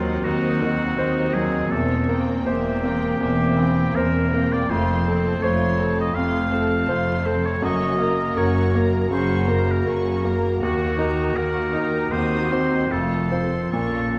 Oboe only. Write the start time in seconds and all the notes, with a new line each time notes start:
Already playing: F4
0.24 F#4
1.34 G#4
1.71 A4
2.46 G4
3.95 A#4
4.53 D5
4.70 C5
5.43 C#5
6.00 D#5
6.15 F5
7.26 C5
7.46 C#5
7.63 D#5
8.37 C#5
9.11 C5
9.71 A#4
10.62 F#4
11.37 A#4
12.11 C5
12.91 A4
13.72 A4